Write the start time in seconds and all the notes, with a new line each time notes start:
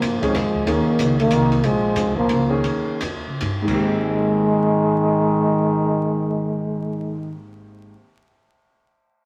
Already playing: F3 A#3
0.01 G2, hi-hat pedal, ride
0.22 D#3 F3 G#3 C4 C#4 G#4, muted upright bass stroke, kick, ride
0.34 F2, snare, ride
0.55 kick
0.66 D#2 D#3 A#3 C#4 G#4, ride
0.99 C#2, hi-hat pedal, ride
1.20 D#3 A#3, ride
1.30 C2, hi-hat pedal, ride
1.52 ride
1.63 A#1 F3 G#3, ride
1.95 F2, hi-hat pedal, ride
2.07 C#2
2.16 A#1 F3 A#3, kick
2.29 C#2, ride
2.50 D#3 A#3 C#4 G#4
2.63 D#2, ride
2.88 muted upright bass stroke
3.00 F2, hi-hat pedal, ride
3.15 D#2
3.27 C#2
3.41 G2, ride
3.62 G#2 D#3
3.67 G#1 D#3 G#3 A#3 C4, kick, crash
3.74 G4